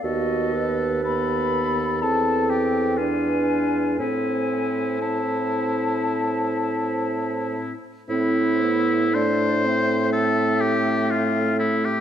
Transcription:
<<
  \new Staff \with { instrumentName = "Flute" } { \time 4/4 \key a \minor \tempo 4 = 59 dis''8 r8 b''4 a''8 g''8 gis''4 | gis''4 a''2~ a''8 r8 | c''4 d''8 e''2~ e''8 | }
  \new Staff \with { instrumentName = "Clarinet" } { \time 4/4 \key a \minor fis'8 b'4 r8 a'4 b'4 | c''2.~ c''8 r8 | e'4 d'8 c'2~ c'8 | }
  \new Staff \with { instrumentName = "Oboe" } { \time 4/4 \key a \minor a'4 a'4 a'8 g'8 f'4 | e'4 e'2~ e'8 r8 | e'4 c''4 a'8 g'8 f'8 e'16 g'16 | }
  \new Staff \with { instrumentName = "French horn" } { \time 4/4 \key a \minor b4 b4 c'4 d'4 | c'4 c'2~ c'8 r8 | c'8 b8 a2. | }
  \new Staff \with { instrumentName = "Bassoon" } { \clef bass \time 4/4 \key a \minor dis,2 e,2 | a,2.~ a,8 r8 | a,1 | }
>>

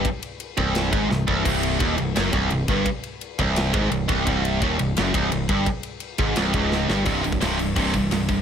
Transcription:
<<
  \new Staff \with { instrumentName = "Distorted electric guitar" } { \clef bass \time 4/4 \key c \minor \tempo 4 = 171 r4. c,4 aes,8 c,8 c,8 | c,4 ees,8 c,8 fis,8 c,8 c,8 g,8 | r4. c,4 aes,8 c,8 c,8 | c,4 ees,8 c,8 fis,8 c,8 c,8 g,8 |
r4. aes,8 c,8 des,4 g,8 | <c, g, c>8 <c, g,>8 <c, g, c>8 <c, g,>8 <c, g, c>8 <c, g,>8 <c, g,>8 <c, g,>8 | }
  \new Staff \with { instrumentName = "Picked electric bass" } { \clef bass \time 4/4 \key c \minor r4. c,,4 aes,,8 c,,8 c,,8 | c,,4 ees,,8 c,,8 fis,,8 c,,8 c,,8 g,,8 | r4. c,,4 aes,,8 c,,8 c,,8 | c,,4 ees,,8 c,,8 fis,,8 c,,8 c,,8 g,,8 |
r4. aes,,8 c,,8 des,,4 g,,8 | c,,8 c,,8 c,,4 c,,4 c,,4 | }
  \new DrumStaff \with { instrumentName = "Drums" } \drummode { \time 4/4 <bd cymr>8 cymr8 cymr8 <bd cymr>8 <cymr sn>8 <bd cymr>8 sn8 bd8 | <cymc bd>8 cymr8 <bd cymr>8 cymr8 <cymr sn>8 <bd cymr>8 cymr8 <bd cymr>8 | <bd cymr>8 cymr8 cymr8 <bd cymr>8 <cymr sn>8 <bd cymr>8 cymr8 <bd cymr>8 | <bd cymr>8 cymr8 <bd cymr>8 cymr8 <cymr sn>8 <bd cymr>8 cymr8 <bd cymr>8 |
<bd cymr>8 cymr8 cymr8 <bd cymr>8 <cymr sn>8 <bd cymr>8 sn8 sn8 | <cymc bd>8 cymc16 bd16 <cymc sn>8 cymc8 <cymc bd>8 <cymc bd>8 <cymc sn>8 <cymc bd>8 | }
>>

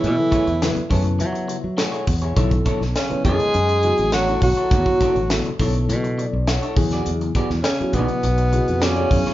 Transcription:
<<
  \new Staff \with { instrumentName = "Clean electric guitar" } { \time 4/4 \key b \dorian \tempo 4 = 102 r8 <a e' gis' cis''>16 r8. <a e' gis' cis''>16 r4 r16 <a e' gis' cis''>16 <a e' gis' cis''>16 r16 <e' gis' cis''>16 | <d' e' a' cis''>16 r16 <d' e' a' cis''>16 r8. <d' e' a' cis''>16 r4 r16 <d' e' a' cis''>16 <d' e' a' cis''>16 r16 <e' a' cis''>16 | r8 <d' e' a' cis''>16 r8. <d' e' a' cis''>16 r4 r16 <d' e' a' cis''>16 <d' e' a' cis''>16 r16 <fis' gis' d''>16 | r8 <b fis' gis' d''>16 r8. <b fis' gis' d''>16 r4 r16 <b fis' gis' d''>16 <b fis' gis' d''>16 r16 <e' gis' cis''>16 | }
  \new Staff \with { instrumentName = "Tenor saxophone" } { \time 4/4 \key b \dorian e'4.~ e'16 r2 r16 | r4 cis'8 gis'4. fis'8 fis'8~ | fis'4. r2 r8 | r4 cis'8 b4. cis'4 | }
  \new Staff \with { instrumentName = "Tine electric piano" } { \time 4/4 \key b \dorian r4. a''8 e''4 fis''4 | r1 | r2 r8 d''8 fis''8 gis''8 | r1 | }
  \new Staff \with { instrumentName = "Tine electric piano" } { \time 4/4 \key b \dorian r16 <cis fis b e' a'>8 r16 <cis fis b e' b'>16 r16 <cis fis b e' b'>4~ <cis fis b e' b'>16 r4 r16 | <cis fis b e' a'>8. r8 <cis fis b e' b'>8. r8 <cis fis b e' fis'>4 r8 | r16 <cis fis b e' fis'>8 r16 <cis fis b e' a'>16 r16 <cis fis b e' a'>4~ <cis fis b e' a'>16 r8. <cis fis b e' gis'>8~ | <cis fis b e' gis'>4 r16 <cis fis b e' fis'>8. r8 <cis b e' fis' gis'>4 <cis fis b e' gis'>8 | }
  \new Staff \with { instrumentName = "Trombone" } { \clef bass \time 4/4 \key b \dorian e4.~ e16 r2 r16 | r4 cis8 gis4. fis8 fis8~ | fis4. r2 r8 | r4 cis8 b,4. cis4 | }
  \new Staff \with { instrumentName = "Fingered electric bass" } { \clef bass \time 4/4 \key b \dorian b,16 r8 e,8 r16 fis,8 fis8. fis8 r16 e,8 | b,,8 r16 b,,16 r8 fis,16 r16 fis,8. a,,8. b,,16 r16 | e,16 r8 a,,8 r16 b,,8 b,8. b,,8 r16 e,8 | e,8 r16 e,16 r8 b,,16 r16 b,,8. eis,8. fis,16 r16 | }
  \new DrumStaff \with { instrumentName = "Drums" } \drummode { \time 4/4 hh8 <hh bd>16 hh16 <hh sn>16 hh16 <hho bd>16 hh16 hh16 hh16 hh8 <hh sn>16 hh16 <hho bd>16 hh16 | <hh bd>16 <hh bd>16 <hh bd>16 sn16 <hh sn>16 hh16 <hh bd>16 hh16 hh16 hh16 hh16 hh16 <hh sn>16 hh16 <hho bd>16 hh16 | <hh bd>16 bd16 <hh bd>16 hh16 <hh sn>16 hh16 <hho bd>16 hh16 hh16 hh16 hh8 <hh sn>16 hh16 <hho bd>16 <hh sn>16 | hh16 hh16 <hh bd>16 sn16 <hh sn>16 hh16 <hh bd>16 hh16 hh16 hh16 hh16 hh16 <hh sn>16 hh16 <hho bd>16 <hh sn>16 | }
>>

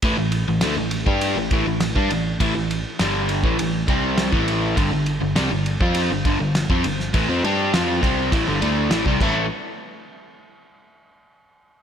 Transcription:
<<
  \new Staff \with { instrumentName = "Overdriven electric guitar" } { \clef bass \time 4/4 \key a \minor \tempo 4 = 101 <a, e>16 <a, e>8 <a, e>16 <d a>16 <a, e>8 <g d' g'>8 <a, e>16 <a, e>16 <a, e>8 <g d'>16 <a, e>8 | <a, e>16 <a, e>8 r16 <g, d g>8. <a, e>16 <a, e>8 <c g c'>8. <a, e a>8. | <g, d>16 <g, d>8 <g, d>16 <c g>16 <g, d>8 <f c' f'>8 <g, d>16 <g, d>16 <g, d>8 <f c'>16 <g, d>8 | <a, e>16 <f c'>16 <g d' g'>8 <f c' f'>8 <c g c'>8 <a, e>16 <g, d>16 <d a d'>8 <a, e>16 <c g>16 <a, e a>8 |
r1 | }
  \new Staff \with { instrumentName = "Picked electric bass" } { \clef bass \time 4/4 \key a \minor a,,16 a,,8 a,,16 d,16 a,,8 g,8 a,,16 a,,16 a,,8 g,16 a,,8 | a,,16 a,,8 r16 g,,8. a,,16 a,,8 c,8. a,,8. | g,,16 g,,8 g,,16 c,16 g,,8 f,8 g,,16 g,,16 g,,8 f,16 g,,8 | a,,16 f,16 g,8 f,8 c,8 a,,16 g,,16 d,8 a,,16 c,16 a,,8 |
r1 | }
  \new DrumStaff \with { instrumentName = "Drums" } \drummode { \time 4/4 <bd cymr>8 cymr8 <cymr sn>8 cymr16 bd16 cymr8 <bd cymr>8 <cymr sn>16 bd16 cymr8 | <bd cymr>8 cymr8 <cymr sn>8 cymr16 bd16 cymr8 <bd cymr>8 <cymr sn>16 bd16 cymr8 | <bd cymr>8 cymr8 <cymr sn>8 cymr16 bd16 cymr8 <bd cymr>8 <cymr sn>16 bd16 cymr16 sn16 | <bd cymr>8 cymr8 <cymr sn>8 <bd cymr>8 <bd cymr>8 cymr8 <cymr sn>16 bd16 <cymc bd>8 |
r4 r4 r4 r4 | }
>>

